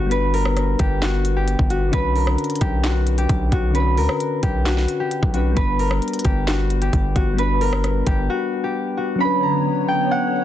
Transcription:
Already playing: G1 G3 B3 D4 F#4 A#4 B4
0.06 G3 B3
0.11 D4 B4, closed hi-hat
0.16 B4
0.34 A#4, open hi-hat
0.45 cross-stick
0.57 cross-stick, closed hi-hat
0.79 G1 G4, kick, closed hi-hat
1.02 F#4, snare, clap, closed hi-hat
1.25 closed hi-hat
1.36 G4
1.48 closed hi-hat
1.59 G1, kick
1.70 F#4, closed hi-hat
1.88 D3 C#4
1.93 B1 D4 B4, kick, closed hi-hat
1.98 B4
2.16 A#4, open hi-hat
2.27 cross-stick
2.38 closed hi-hat
2.44 closed hi-hat
2.50 closed hi-hat
2.56 closed hi-hat
2.61 B1 G4, kick, closed hi-hat
2.84 F#4, snare, clap, closed hi-hat
3.07 closed hi-hat
3.18 G4, closed hi-hat
3.29 B1, kick, closed hi-hat
3.52 B1 F#4, kick, closed hi-hat
3.71 D3 C#4
3.75 D4 B4, closed hi-hat
3.80 B4
3.98 D2 A#4, open hi-hat
4.09 cross-stick
4.20 closed hi-hat
4.43 B1 G4, kick, closed hi-hat
4.66 F#4, snare, clap, closed hi-hat
4.77 snare
4.88 closed hi-hat
5.00 G4
5.11 closed hi-hat
5.23 B1, kick
5.32 F#3 C#4 D4 F#4, closed hi-hat
5.37 B4
5.52 G3 B3
5.57 G1 D4 B4, kick, closed hi-hat
5.61 B4
5.79 A#4, open hi-hat
5.91 cross-stick
6.02 closed hi-hat
6.08 closed hi-hat
6.14 closed hi-hat
6.19 closed hi-hat
6.25 G1 G4, kick, closed hi-hat
6.47 F#4, snare, clap, closed hi-hat
6.70 closed hi-hat
6.82 G4, closed hi-hat
6.93 G1, kick, closed hi-hat
7.16 G1 F#4, kick, closed hi-hat
7.34 G3 B3
7.39 D4 B4, closed hi-hat
7.43 B4
7.61 A#4, open hi-hat
7.73 cross-stick
7.84 cross-stick, closed hi-hat
8.07 G1 G4, kick, closed hi-hat
8.30 F#4
8.64 G4
8.97 F#4
9.16 F#3 C#4
9.20 D3 B3 D4 C#5 B5
9.25 B4
9.43 A#5
9.88 G5
10.11 F#5

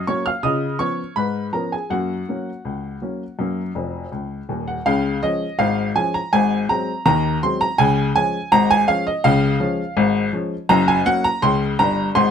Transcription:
0.07 F#3 A#3 C#4 C#5 C#6
0.26 F5 F6
0.43 C#3 F4 D#5 D#6
0.79 F3 B3 C#4 C#5 C#6
1.16 G#2 B4 B5
1.53 F3 B3 C#4 A#4 A#5
1.72 G#4 G#5
1.90 F#2 A#3 F#4 F#5
2.29 F#3 A#3 C#4
2.65 C#2
3.02 F#3 A#3 C#4
3.39 F#2 A#3
3.75 F1 F2
4.12 C#2
4.49 D#1 D#2
4.68 F#5
4.86 C#2 C#3 F5
5.23 F3 G#3 C#4 D#5
5.59 G#1 G#2 F5
5.96 F3 G#3 C#4 G#5
6.14 A#5
6.33 G#1 G#2 G#5
6.69 F#3 G#3 C4 A#5
7.06 D#2 D#3 A#5
7.43 F#3 G#3 C4 C6
7.61 A#5
7.78 C#2 C#3 G#5
8.16 F3 G#3 C#4 G#5
8.52 G#1 G#2 A#5
8.71 G#5
8.88 F3 G#3 C#4 F5
9.07 D#5
9.24 C#2 C#3 F5
9.60 F3 G#3 C#4
9.97 G#1 G#2
10.33 F3 G#3 C#4
10.69 F#1 F#2 A#5
10.88 G#5
11.06 F#3 A#3 C#4 F#5
11.24 A#5
11.42 C#2 C#3 C6
11.79 G1 G2 A#5
12.15 G#1 G#2 C6

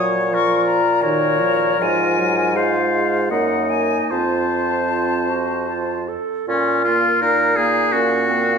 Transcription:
Already playing: A#2 F#3 F4 C#5
0.30 F3 F4 A#4 C#6
0.66 A#5
1.02 D#3 F#4 A#4 C#5
1.40 F3
1.79 G#2 F3 F4 G#5
2.18 F#3
2.55 G#3 F4 C5 F5
3.30 F#2 A#3 D#4 D#5 F#5
3.70 G#5
4.10 F2 C4 F4 C5 A5
4.90 F4
5.30 F#4
5.69 F4
6.09 A4
6.48 A#2 C#4 F4
6.84 A#3 F4 F5
7.21 A#2 D#4 A#4
7.56 A#3 G#4 F5
7.92 A#2 C#4 F#4
8.28 A#3 C4 F5

